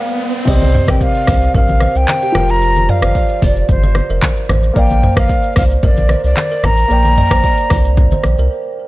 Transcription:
0.00 0.42 A#3 medium
0.00 0.43 A#4 medium
0.00 0.49 C5 medium
0.00 0.47 D5 medium
0.00 0.50 F5 medium
0.00 0.49 G5 medium
0.00 0.50 A#5 medium
0.00 riser medium
0.45 0.80 C2 loud
0.45 2.30 C3 medium
0.45 2.31 C4 medium
0.45 2.32 G4 medium
0.45 0.91 C5 loud
0.45 0.56 D5 medium
0.45 kick loud
0.45 crash loud
0.45 shaker medium
0.50 2.33 D#5 medium
0.62 high conga medium
0.62 shaker medium
0.75 0.83 C5 medium
0.75 mid tom loud
0.87 0.98 A#1 medium
0.87 0.96 A#4 medium
0.87 1.04 G5 medium
0.87 kick medium
0.87 cross-stick loud
0.87 high conga medium
0.87 shaker medium
1.01 1.55 F5 loud
1.01 kick medium
1.01 shaker medium
1.15 shaker medium
1.27 1.49 C2 medium
1.27 1.37 C5 medium
1.27 kick medium
1.27 cross-stick loud
1.27 open hi-hat medium
1.27 high conga medium
1.27 low conga medium
1.27 shaker medium
1.42 shaker medium
1.54 1.87 A#1 loud
1.54 1.64 A#4 medium
1.54 1.98 F5 loud
1.54 kick loud
1.54 low conga medium
1.54 shaker medium
1.68 high conga medium
1.68 shaker medium
1.80 1.90 C5 medium
1.80 cross-stick medium
1.80 high conga medium
1.80 shaker medium
1.95 2.06 C2 medium
1.95 2.52 G5 loud
1.95 shaker medium
2.08 clap medium
2.08 high conga medium
2.08 shaker medium
2.22 2.30 G4 medium
2.22 shaker soft
2.32 2.89 F1 loud
2.32 4.44 F3 medium
2.32 4.45 F4 medium
2.32 4.46 A#4 medium
2.32 2.44 A#4 medium
2.32 cross-stick loud
2.32 high conga medium
2.32 low conga medium
2.32 shaker medium
2.37 4.46 C5 medium
2.48 2.92 A#5 loud
2.48 shaker medium
2.62 shaker medium
2.76 high conga medium
2.76 shaker medium
2.89 3.03 D5 medium
2.89 3.45 F5 loud
2.89 mid tom loud
3.01 3.13 G1 loud
3.01 3.11 C5 medium
3.01 cross-stick loud
3.01 high conga medium
3.01 shaker medium
3.15 3.32 D5 medium
3.15 kick medium
3.15 shaker medium
3.29 shaker medium
3.42 3.63 F1 medium
3.42 3.70 D5 medium
3.42 kick loud
3.42 open hi-hat medium
3.42 high conga medium
3.42 low conga medium
3.42 shaker medium
3.56 shaker medium
3.69 4.01 G1 loud
3.69 4.20 C5 medium
3.69 kick loud
3.69 low conga medium
3.69 shaker medium
3.83 3.91 C5 medium
3.83 high conga medium
3.83 shaker medium
3.95 cross-stick medium
3.95 high conga medium
3.95 shaker soft
4.10 4.20 F1 medium
4.10 4.18 A#4 medium
4.10 shaker medium
4.22 kick medium
4.22 clap loud
4.22 high conga medium
4.22 shaker medium
4.37 shaker soft
4.49 4.71 A1 loud
4.49 4.58 C5 medium
4.49 cross-stick loud
4.49 high conga medium
4.49 low conga medium
4.49 shaker medium
4.63 shaker medium
4.73 5.08 A#1 loud
4.73 6.85 A#3 medium
4.73 6.86 A#4 medium
4.73 4.85 D5 medium
4.73 6.87 D5 medium
4.73 kick loud
4.73 shaker medium
4.78 6.88 F5 medium
4.78 5.15 G5 loud
4.90 high conga medium
4.90 shaker medium
5.03 5.12 C5 medium
5.03 mid tom loud
5.16 5.27 A#1 medium
5.16 5.25 A#4 medium
5.16 5.54 F5 loud
5.16 kick loud
5.16 cross-stick loud
5.16 high conga medium
5.16 shaker medium
5.29 kick medium
5.29 shaker medium
5.43 shaker medium
5.56 5.78 C2 medium
5.56 5.65 C5 medium
5.56 5.64 F5 medium
5.56 kick medium
5.56 cross-stick loud
5.56 open hi-hat medium
5.56 high conga medium
5.56 low conga medium
5.56 shaker medium
5.70 shaker medium
5.83 6.16 A#1 loud
5.83 5.92 A#4 medium
5.83 6.22 D5 loud
5.83 kick loud
5.83 low conga medium
5.83 shaker medium
5.97 high conga medium
5.97 shaker medium
6.09 6.19 C5 medium
6.09 cross-stick medium
6.09 high conga medium
6.09 shaker soft
6.24 6.34 C2 medium
6.24 6.66 D5 loud
6.24 shaker medium
6.36 clap medium
6.36 high conga medium
6.36 shaker medium
6.51 6.59 A#4 medium
6.51 shaker soft
6.63 6.85 A1 loud
6.63 6.72 A#4 medium
6.63 8.25 A#5 loud
6.63 cross-stick loud
6.63 high conga medium
6.63 low conga medium
6.63 shaker medium
6.77 shaker medium
6.88 7.23 A#1 loud
6.88 8.88 A#3 medium
6.88 8.88 A#4 medium
6.88 8.88 D5 medium
6.88 shaker medium
6.93 8.88 G5 medium
7.04 high conga medium
7.04 shaker medium
7.17 7.26 D5 medium
7.17 mid tom loud
7.17 shaker soft
7.30 7.41 A#1 medium
7.30 7.39 C5 medium
7.30 kick medium
7.30 cross-stick loud
7.30 high conga medium
7.30 shaker medium
7.44 7.60 D5 medium
7.44 kick medium
7.44 shaker medium
7.58 shaker medium
7.70 8.13 C2 medium
7.70 kick loud
7.70 cross-stick loud
7.70 open hi-hat medium
7.70 high conga medium
7.70 low conga medium
7.70 shaker medium
7.85 shaker medium
7.97 kick loud
7.97 low conga medium
7.97 shaker medium
8.11 8.20 C5 medium
8.11 high conga medium
8.11 shaker medium
8.24 8.35 A#1 medium
8.24 cross-stick medium
8.24 high conga medium
8.24 shaker medium
8.38 8.48 C2 loud
8.38 8.47 A#4 medium
8.38 shaker medium

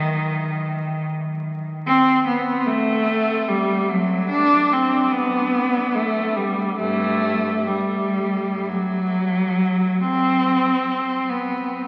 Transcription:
0.00 1.09 D#3 medium
1.87 2.24 C4 loud
2.28 2.67 B3 medium
2.66 3.48 A3 medium
3.48 3.90 G3 medium
3.89 4.31 F#3 medium
4.29 4.71 D4 loud
4.72 5.14 C4 medium
5.12 5.95 B3 medium
5.95 6.37 A3 medium
6.36 6.79 G3 medium
6.78 7.63 G2 medium
6.78 7.65 A3 medium
7.67 8.67 G3 medium
8.68 10.02 F#3 medium
10.01 11.29 C4 medium
11.30 11.87 B3 medium

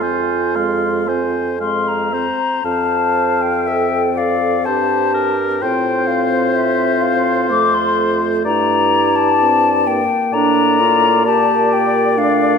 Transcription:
0.00 2.27 F2 soft
0.00 0.57 C4 soft
0.00 1.61 F4 soft
0.00 0.57 C5 soft
0.00 0.57 G#5 soft
0.56 1.10 G#3 soft
0.56 1.10 F5 soft
0.56 1.09 C6 soft
1.08 1.60 C4 soft
1.08 1.60 C5 soft
1.08 1.60 G#5 soft
1.60 2.14 G#3 soft
1.60 2.15 F5 soft
1.60 1.90 C6 soft
1.88 2.66 A#5 soft
2.13 2.65 C4 soft
2.13 2.64 C5 soft
2.64 4.68 F2 soft
2.64 5.46 C4 soft
2.64 3.69 C5 soft
2.64 3.68 F5 soft
2.64 3.43 A5 medium
3.42 4.19 G5 medium
3.67 4.69 A4 soft
3.67 4.02 E5 soft
4.17 4.67 D5 soft
4.17 4.67 F5 medium
4.65 5.62 G2 soft
4.65 5.62 G4 soft
4.65 5.14 C5 soft
4.65 5.37 A5 medium
5.14 5.64 A#4 soft
5.61 7.47 A2 soft
5.61 7.52 C4 soft
5.61 8.41 F4 soft
5.61 8.45 C5 soft
5.61 6.08 G5 medium
6.07 6.57 F5 medium
6.56 7.03 E5 medium
7.02 7.50 F5 medium
7.50 8.43 F2 soft
7.50 9.11 A3 soft
7.50 7.76 D6 medium
7.74 8.21 C6 medium
8.45 10.02 G2 soft
8.45 10.02 E4 soft
8.45 10.02 D5 soft
8.45 9.17 A#5 medium
9.16 9.88 A5 medium
9.39 9.88 C4 soft
9.87 12.20 A#3 soft
9.87 10.35 G5 medium
10.32 11.27 A2 soft
10.32 10.82 D4 soft
10.32 11.22 D5 soft
10.32 11.26 A#5 medium
10.80 11.28 F4 medium
11.25 12.58 A#2 medium
11.25 12.18 G4 medium
11.25 12.58 D5 medium
11.25 11.74 A5 medium
11.73 12.20 G5 medium
12.17 12.58 A3 soft
12.17 12.58 D4 medium
12.17 12.58 F5 medium

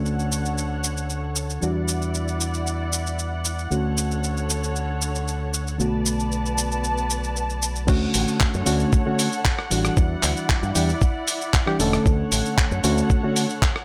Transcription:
0.00 1.60 D2 medium
0.00 1.59 D3 medium
0.00 1.61 D3 medium
0.00 1.59 A3 medium
0.00 1.60 C#4 medium
0.00 1.60 F#4 medium
0.00 1.61 A4 medium
0.00 1.60 C#5 medium
0.00 1.60 F#5 medium
0.06 cabasa soft
0.19 cabasa soft
0.32 cabasa medium
0.45 cabasa soft
0.58 cabasa soft
0.84 cabasa medium
0.97 cabasa soft
1.10 cabasa soft
1.36 cabasa medium
1.50 cabasa soft
1.61 3.69 E2 medium
1.61 3.67 E3 medium
1.61 3.68 G3 medium
1.61 3.68 D4 medium
1.61 3.70 E4 medium
1.61 3.68 F#4 medium
1.61 3.70 D5 medium
1.61 5.76 F#5 medium
1.61 cabasa soft
1.88 cabasa medium
2.02 cabasa soft
2.14 cabasa soft
2.28 cabasa soft
2.40 cabasa medium
2.54 cabasa soft
2.67 cabasa soft
2.93 cabasa medium
3.07 cabasa soft
3.19 cabasa soft
3.45 cabasa medium
3.59 cabasa soft
3.71 5.77 D2 medium
3.71 5.76 D3 medium
3.71 5.78 D3 medium
3.71 5.77 A3 medium
3.71 5.77 C#4 medium
3.71 5.77 F#4 medium
3.71 5.78 A4 medium
3.71 5.78 C#5 medium
3.71 cabasa soft
3.97 cabasa medium
4.11 cabasa soft
4.24 cabasa soft
4.37 cabasa soft
4.50 cabasa medium
4.64 cabasa soft
4.76 cabasa soft
5.02 cabasa medium
5.15 cabasa soft
5.28 cabasa soft
5.54 cabasa medium
5.67 cabasa soft
5.79 7.86 B1 medium
5.79 7.85 D3 medium
5.79 7.85 A3 medium
5.79 7.87 B3 medium
5.79 7.86 B3 medium
5.79 7.86 F#4 medium
5.79 7.87 B4 medium
5.79 7.87 D5 medium
5.79 7.87 A5 medium
5.79 cabasa soft
6.06 cabasa medium
6.20 cabasa soft
6.32 cabasa soft
6.46 cabasa soft
6.58 cabasa medium
6.72 cabasa soft
6.84 cabasa soft
6.98 cabasa soft
7.10 cabasa medium
7.24 cabasa soft
7.36 cabasa soft
7.50 cabasa soft
7.62 cabasa medium
7.76 cabasa soft
7.87 8.05 D2 loud
7.87 8.61 D3 loud
7.87 9.95 D3 medium
7.87 8.61 A3 medium
7.87 8.62 C#4 medium
7.87 8.62 F#4 loud
7.87 9.96 A4 medium
7.87 9.96 C#5 medium
7.87 12.02 F#5 medium
7.87 kick loud
7.87 crash loud
7.87 cabasa soft
8.14 8.23 A1 loud
8.14 open hi-hat loud
8.14 cabasa medium
8.28 cabasa soft
8.40 kick loud
8.40 clap loud
8.40 cabasa soft
8.54 8.62 F#2 loud
8.54 cabasa soft
8.66 8.83 D2 medium
8.66 9.03 D3 medium
8.66 9.03 A3 medium
8.66 9.03 C#4 medium
8.66 9.03 F#4 loud
8.66 open hi-hat loud
8.66 cabasa medium
8.80 cabasa soft
8.93 kick loud
8.93 cabasa soft
9.06 9.27 D3 medium
9.06 9.27 A3 medium
9.06 9.28 C#4 medium
9.06 9.28 F#4 medium
9.19 open hi-hat loud
9.19 cabasa medium
9.32 cabasa soft
9.45 kick loud
9.45 clap loud
9.45 cabasa soft
9.59 cross-stick medium
9.71 9.88 A1 medium
9.71 10.72 E3 medium
9.71 10.72 G3 medium
9.71 10.73 D4 medium
9.71 10.73 F#4 medium
9.71 open hi-hat loud
9.71 cabasa medium
9.85 cross-stick medium
9.85 cabasa soft
9.97 10.14 E2 loud
9.97 12.04 E4 medium
9.97 12.04 D5 medium
9.97 kick loud
9.97 cabasa soft
10.23 10.32 D2 loud
10.23 clap medium
10.23 open hi-hat loud
10.23 cabasa medium
10.37 cabasa soft
10.49 kick loud
10.49 clap loud
10.49 cabasa soft
10.63 10.71 G2 loud
10.63 cabasa soft
10.75 10.92 E2 loud
10.75 10.89 E3 medium
10.75 10.89 G3 medium
10.75 10.89 D4 medium
10.75 10.89 G4 medium
10.75 open hi-hat loud
10.75 cabasa medium
10.89 cabasa soft
11.01 kick loud
11.01 cabasa soft
11.28 open hi-hat loud
11.28 cabasa medium
11.41 cabasa soft
11.54 kick loud
11.54 clap loud
11.54 cabasa soft
11.67 11.76 E3 loud
11.67 11.76 G3 medium
11.67 11.77 D4 medium
11.67 11.77 G4 loud
11.67 cross-stick medium
11.79 11.96 E1 medium
11.79 12.81 D3 loud
11.79 12.81 A3 medium
11.79 12.81 C#4 medium
11.79 12.82 A4 loud
11.79 open hi-hat loud
11.79 cabasa medium
11.93 cross-stick medium
11.93 cabasa soft
12.06 12.22 D2 loud
12.06 13.85 D3 medium
12.06 13.85 A4 medium
12.06 13.85 C#5 medium
12.06 13.85 F#5 medium
12.06 kick loud
12.06 cabasa soft
12.32 12.40 A1 loud
12.32 open hi-hat loud
12.32 cabasa medium
12.46 cabasa soft
12.58 kick loud
12.58 clap loud
12.58 cabasa soft
12.71 12.79 F#2 loud
12.71 cabasa soft
12.84 13.00 D2 loud
12.84 13.20 D3 medium
12.84 13.20 A3 medium
12.84 13.21 C#4 medium
12.84 13.21 F#4 loud
12.84 open hi-hat loud
12.84 cabasa medium
12.97 cabasa soft
13.10 kick loud
13.10 cabasa soft
13.23 13.45 D3 medium
13.23 13.45 A3 medium
13.23 13.45 C#4 medium
13.23 13.45 F#4 medium
13.36 open hi-hat loud
13.36 cabasa medium
13.50 cabasa soft
13.62 kick loud
13.62 clap loud
13.62 cabasa soft
13.76 cross-stick medium

